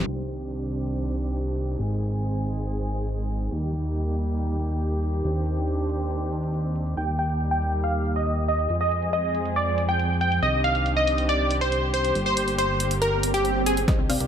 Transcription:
0.07 analog synth bass C2, string section D#3 C4 D4 G4, closed hi-hat, downlifter
0.28 closed hi-hat
0.39 closed hi-hat
0.50 closed hi-hat
0.71 closed hi-hat
0.82 closed hi-hat
0.93 closed hi-hat
1.15 closed hi-hat
1.25 closed hi-hat
1.36 closed hi-hat
1.58 closed hi-hat
1.69 closed hi-hat
1.79 analog synth bass G#1, string section G#3 C4 G#4, closed hi-hat
2.01 closed hi-hat
2.12 closed hi-hat
2.22 closed hi-hat
2.44 closed hi-hat
2.55 closed hi-hat
2.66 closed hi-hat
2.87 closed hi-hat
2.98 closed hi-hat
3.09 closed hi-hat
3.30 closed hi-hat
3.41 closed hi-hat
3.52 analog synth bass D#2, string section G3 A#3 G4, closed hi-hat
3.73 closed hi-hat
3.84 closed hi-hat
3.95 closed hi-hat
4.17 closed hi-hat
4.27 closed hi-hat
4.38 closed hi-hat
4.60 closed hi-hat
4.71 closed hi-hat
4.81 closed hi-hat
5.03 closed hi-hat
5.14 closed hi-hat
5.25 analog synth bass D#2, string section C4 D4, closed hi-hat
5.46 closed hi-hat
5.57 closed hi-hat
5.68 closed hi-hat
5.89 closed hi-hat
6.00 closed hi-hat
6.11 closed hi-hat
6.32 closed hi-hat
6.43 closed hi-hat
6.54 closed hi-hat
6.76 closed hi-hat
6.86 closed hi-hat
6.97 analog synth bass D#2, string section G3 A#3 G4, supersaw synth G5, synth pluck G5, closed hi-hat
7.19 synth pluck G5, supersaw synth G5, closed hi-hat
7.30 closed hi-hat
7.40 closed hi-hat
7.51 synth pluck G5, supersaw synth G5
7.62 closed hi-hat
7.73 closed hi-hat
7.84 synth pluck F5, supersaw synth F5, closed hi-hat
8.05 closed hi-hat
8.16 synth pluck D#5, supersaw synth D#5, closed hi-hat
8.27 closed hi-hat
8.48 supersaw synth D#5, synth pluck D#5, closed hi-hat
8.59 closed hi-hat
8.70 analog synth bass F2, string section F3 G#3 C4 G#4, closed hi-hat
8.81 supersaw synth D#5, synth pluck D#5
8.91 closed hi-hat
9.02 closed hi-hat
9.13 synth pluck D#5, supersaw synth D#5, closed hi-hat
9.35 closed hi-hat
9.45 closed hi-hat
9.56 supersaw synth D5, synth pluck D5, closed hi-hat
9.78 closed hi-hat
9.89 synth pluck G5, supersaw synth G5, closed hi-hat
9.99 closed hi-hat
10.21 supersaw synth G5, synth pluck G5, closed hi-hat
10.32 closed hi-hat
10.43 analog synth bass C2, string section D#3 C4 D4 G4, supersaw synth D#5, synth pluck D#5, closed hi-hat
10.64 synth pluck F5, supersaw synth F5, closed hi-hat
10.75 closed hi-hat
10.86 closed hi-hat
10.97 synth pluck D#5, supersaw synth D#5
11.07 closed hi-hat
11.18 closed hi-hat
11.29 synth pluck D5, supersaw synth D5, closed hi-hat
11.51 closed hi-hat
11.61 synth pluck C5, supersaw synth C5, closed hi-hat
11.72 closed hi-hat
11.94 synth pluck C5, supersaw synth C5, closed hi-hat
12.05 closed hi-hat
12.15 analog synth bass G1, string section D3 G3 A#3, closed hi-hat
12.26 synth pluck C5, supersaw synth C5
12.37 closed hi-hat
12.48 closed hi-hat
12.58 synth pluck C5, supersaw synth C5, closed hi-hat
12.80 closed hi-hat
12.91 closed hi-hat
13.02 supersaw synth A#4, synth pluck A#4, closed hi-hat, swell
13.23 closed hi-hat
13.34 synth pluck G4, supersaw synth G4, closed hi-hat
13.45 closed hi-hat
13.66 synth pluck G#4, supersaw synth G#4, closed hi-hat
13.77 closed hi-hat
13.88 string section D#3 C4 D4 G4, synth arpeggio sound C4, supersaw synth C5 D#5, synth pluck D#5, kick, snare, closed hi-hat
13.99 analog synth bass C2, synth arpeggio sound C4
14.10 analog synth bass C2, synth arpeggio sound C4, supersaw synth D5 F5, synth pluck F5, open hi-hat
14.20 analog synth bass C2, synth arpeggio sound A#3, closed hi-hat

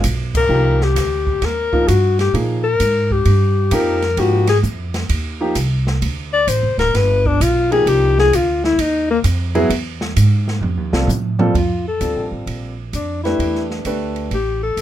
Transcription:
0.03 upright bass B1, kick, hi-hat pedal, ride
0.35 alto saxophone A#4, kick, crash
0.49 upright bass C2, grand piano F3 A#3 D#4 G4
0.81 alto saxophone G4, snare
0.95 upright bass D2, kick, snare, hi-hat pedal, ride
1.27 kick
1.42 upright bass D#2, alto saxophone A#4, kick, snare, ride
1.72 grand piano F3 A#3 D#4 F4, kick
1.88 upright bass G2, alto saxophone F#4, kick, hi-hat pedal, ride
2.19 alto saxophone G4, snare, ride
2.34 upright bass A#2, grand piano F3 A#3 D#4 G#4, kick, ride
2.64 alto saxophone A#4
2.80 upright bass G#2, kick, hi-hat pedal, ride
3.11 alto saxophone G4, kick
3.25 upright bass G2, kick, ride
3.71 upright bass F2, grand piano F3 A#3 D#4 G4, alto saxophone A#4, kick, hi-hat pedal, ride
4.02 snare, ride
4.17 upright bass G#2, grand piano F3 A#3 D#4 G4, alto saxophone F#4, kick, ride
4.47 alto saxophone G#4, snare, ride
4.63 upright bass F2, kick, hi-hat pedal
4.94 snare, ride
5.09 upright bass D#2, kick, ride
5.40 grand piano F3 A#3 D#4 G4
5.55 upright bass C2, kick, hi-hat pedal, ride
5.87 snare
6.02 upright bass D2, kick, ride
6.33 alto saxophone D5
6.47 upright bass A1, alto saxophone C5, kick, hi-hat pedal, ride
6.63 upright bass F1
6.78 upright bass D1, alto saxophone A#4, snare, ride
6.94 upright bass G1, alto saxophone B4, kick, snare, ride
7.25 alto saxophone D4, kick
7.40 upright bass B1, alto saxophone F4, kick, hi-hat pedal, ride
7.71 grand piano F3 A#3 D#4 G4, alto saxophone G#4, ride
7.86 upright bass C2, alto saxophone G4, kick, ride
8.19 alto saxophone G#4, snare
8.33 upright bass D2, alto saxophone F4, kick, hi-hat pedal, ride
8.64 alto saxophone E4, snare
8.78 upright bass D#2, alto saxophone D#4, kick, ride
9.11 alto saxophone A#3
9.24 upright bass F2, kick, hi-hat pedal, ride
9.55 grand piano F#3 B3 E4 G#4, ride
9.70 upright bass E2, kick, ride
10.01 snare
10.16 upright bass G#2, kick, hi-hat pedal, ride
10.48 snare
10.61 upright bass F2, mid tom
10.77 upright bass D#2
10.93 upright bass C2, grand piano G3 C4 F4 A4, snare
11.07 upright bass A2, hi-hat pedal, mid tom
11.39 grand piano A#2 G3 C4 F4 A4, mid tom
11.54 upright bass F2, alto saxophone F4, kick, ride
11.88 alto saxophone A4
12.01 upright bass D2, grand piano G3 C4 F4 A4, kick, hi-hat pedal, ride
12.17 upright bass A#1
12.31 upright bass A1
12.46 upright bass A#1, kick, ride
12.93 upright bass F2, alto saxophone D4, kick, hi-hat pedal, ride
13.24 grand piano A3 D4 G4 B4, alto saxophone E4, snare, ride
13.39 upright bass E2, kick, ride
13.55 snare
13.71 snare
13.85 upright bass D2, grand piano A3 D4 G4 B4, kick, hi-hat pedal, ride
14.16 ride
14.31 upright bass A1, alto saxophone G4, kick, ride
14.63 alto saxophone A4
14.77 upright bass C#2, kick, hi-hat pedal, ride

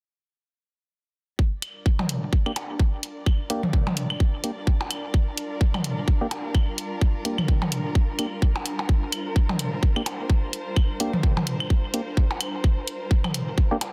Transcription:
1.39 string section G3, synth drone D4, kick
1.58 string section D5
1.62 closed hi-hat, claves
1.69 string section F4 A#4
1.86 kick
1.99 mid tom, percussion blips
2.09 closed hi-hat
2.33 kick
2.46 synth stab A#3 D4 G4, claves
2.56 closed hi-hat, percussion blips
2.79 kick
3.03 closed hi-hat
3.26 kick, claves
3.50 synth stab A#3 D4 G4, closed hi-hat
3.63 mid tom
3.73 kick
3.87 mid tom, percussion blips
3.97 closed hi-hat
4.10 claves
4.20 kick
4.44 synth stab A#3 D4 G4, closed hi-hat
4.67 kick
4.81 percussion blips
4.91 closed hi-hat, claves
5.14 kick
5.38 closed hi-hat
5.61 kick
5.74 mid tom, claves, percussion blips
5.84 closed hi-hat
6.08 kick
6.21 synth stab A#3 D4 G4
6.31 closed hi-hat, percussion blips
6.55 kick, claves
6.78 closed hi-hat
7.01 kick
7.25 synth stab A#3 D4 G4, closed hi-hat
7.38 mid tom, claves
7.48 kick
7.62 mid tom, percussion blips
7.72 closed hi-hat
7.95 kick
8.19 synth stab A#3 D4 G4, closed hi-hat, claves
8.42 kick
8.54 string section C5, percussion blips
8.66 closed hi-hat
8.79 percussion blips
8.89 kick
9.12 closed hi-hat, claves
9.36 kick
9.49 mid tom, percussion blips
9.59 closed hi-hat
9.83 kick
9.96 synth stab A#3 D4 G4, claves
10.06 closed hi-hat, percussion blips
10.30 kick
10.53 closed hi-hat
10.76 kick, claves
11.00 synth stab A#3 D4 G4, closed hi-hat
11.13 mid tom
11.23 kick
11.37 mid tom, percussion blips
11.47 closed hi-hat
11.60 claves
11.70 kick
11.94 synth stab A#3 D4 G4, closed hi-hat
12.17 kick
12.31 percussion blips
12.41 closed hi-hat, claves
12.64 kick
12.88 closed hi-hat
13.11 kick
13.24 mid tom, claves, percussion blips
13.34 closed hi-hat
13.58 kick
13.71 synth stab A#3 D4 G4
13.81 closed hi-hat, percussion blips

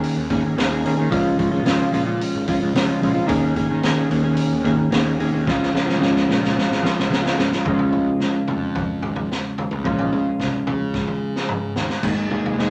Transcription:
Already playing: clean electric guitar D#3 A#3 C#4 G#4
0.03 open hi-hat
0.16 picked electric bass D#2
0.30 clean electric guitar D#3 A#3 C#4 G#4, kick, open hi-hat
0.45 clean electric guitar A#3 C#4 G#4
0.57 picked electric bass D#2, clean electric guitar D#3 A#3 C#4 G#4, snare, open hi-hat
0.72 clean electric guitar A#3 C#4 G#4
0.84 clean electric guitar D#3 A#3 C#4 G#4, open hi-hat
0.97 picked electric bass D#3, clean electric guitar A#3 C#4 G#4
1.09 picked electric bass C#2, clean electric guitar C#3 F3 G#3 C#4 F4, kick, open hi-hat
1.37 clean electric guitar F3 G#3 C#4 F4, kick, open hi-hat
1.51 picked electric bass G#1, clean electric guitar G#3 C#4 F4
1.64 clean electric guitar C#3 F3 G#3 C#4 F4, snare, open hi-hat
1.91 picked electric bass A#2, clean electric guitar F3 G#3 C#4 F4, open hi-hat
2.05 clean electric guitar G#3 C#4 F4
2.21 open hi-hat
2.35 picked electric bass G#1
2.47 clean electric guitar F3 G#3 C#4 F4, kick, open hi-hat
2.61 picked electric bass C#2, clean electric guitar G#3 C#4 F4
2.74 clean electric guitar C#3 F3 G#3 C#4 F4, snare, open hi-hat
2.88 clean electric guitar G#3 C#4 F4
3.02 picked electric bass A#1, clean electric guitar F3 G#3 C#4 F4, open hi-hat
3.14 clean electric guitar G#3 C#4 F4
3.26 picked electric bass D#2, clean electric guitar D#3 A#3 C#4 G#4, kick, open hi-hat
3.55 clean electric guitar D#3 A#3 C#4 G#4, kick, open hi-hat
3.69 picked electric bass D#3, clean electric guitar A#3 C#4 G#4
3.83 clean electric guitar D#3 A#3 C#4 G#4, snare, open hi-hat
4.09 picked electric bass D#2, clean electric guitar D#3 A#3 C#4 G#4, open hi-hat
4.24 clean electric guitar A#3 C#4 G#4
4.37 open hi-hat
4.52 picked electric bass D#2
4.64 clean electric guitar D#3 A#3 C#4 G#4, kick, open hi-hat
4.78 clean electric guitar A#3 C#4 G#4
4.90 picked electric bass D#2, clean electric guitar D#3 A#3 C#4 G#4, snare, open hi-hat
5.05 clean electric guitar A#3 C#4 G#4
5.19 clean electric guitar D#3 A#3 C#4 G#4, open hi-hat
5.32 picked electric bass D#2, clean electric guitar A#3 C#4 G#4
5.46 picked electric bass C#2, clean electric guitar C#3 F3 G#3 C#4 F4, kick, snare
5.63 snare
5.73 clean electric guitar F3 G#3 C#4 F4, snare
5.86 picked electric bass G#1, clean electric guitar G#3 C#4 F4, snare
5.99 clean electric guitar C#3 F3 G#3 C#4 F4, snare
6.16 snare
6.28 picked electric bass A#2, clean electric guitar F3 G#3 C#4 F4, snare
6.41 clean electric guitar G#3 C#4 F4, snare
6.58 snare
6.71 picked electric bass G#1, snare
6.82 clean electric guitar F3 G#3 C#4 F4, snare
6.96 picked electric bass C#2, clean electric guitar G#3 C#4 F4, snare
7.09 clean electric guitar C#3 F3 G#3 C#4 F4, snare
7.23 clean electric guitar G#3 C#4 F4, snare
7.37 picked electric bass G#1, clean electric guitar F3 G#3 C#4 F4, snare
7.52 clean electric guitar G#3 C#4 F4, snare
7.65 picked electric bass C#2, clean electric guitar C#3 F3 G#3 C#4 F4, kick, floor tom
7.79 floor tom
7.92 picked electric bass C#2, mid tom
8.20 picked electric bass C#2, snare
8.48 picked electric bass F2, floor tom, mid tom
8.75 kick, floor tom
9.03 picked electric bass G#1, floor tom
9.16 floor tom
9.32 snare
9.58 floor tom
9.71 picked electric bass C#2, mid tom
9.84 picked electric bass A#2, clean electric guitar C#3 F3 G#3 C#4 F4, kick, floor tom
9.99 floor tom
10.13 picked electric bass C#3, mid tom
10.40 picked electric bass C2, kick, snare
10.67 picked electric bass C#3, floor tom, mid tom
10.94 kick, snare
11.08 high tom
11.36 snare
11.48 mid tom
11.76 picked electric bass D#2, snare
11.90 snare
12.03 picked electric bass G#1, clean electric guitar G#3 A#3 D#4 G#4, kick, floor tom, crash
12.15 clean electric guitar A#3 D#4 G#4
12.30 clean electric guitar G#3 A#3 D#4 G#4, floor tom, mid tom
12.44 picked electric bass F1, floor tom
12.57 clean electric guitar G#3 A#3 D#4 G#4, snare

